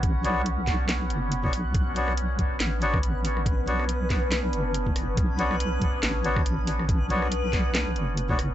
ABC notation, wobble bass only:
X:1
M:4/4
L:1/8
Q:"Swing 16ths" 1/4=140
K:Bm
V:1 name="Wobble bass" clef=bass
A,,, B,,,4 F,,,2 B,,, | B,,,3 z A,,,4- | A,,, B,,,4 F,,,2 F,,, | B,,,3 z A,,,4- |
A,,, B,,,4 F,,,2 F,,, |]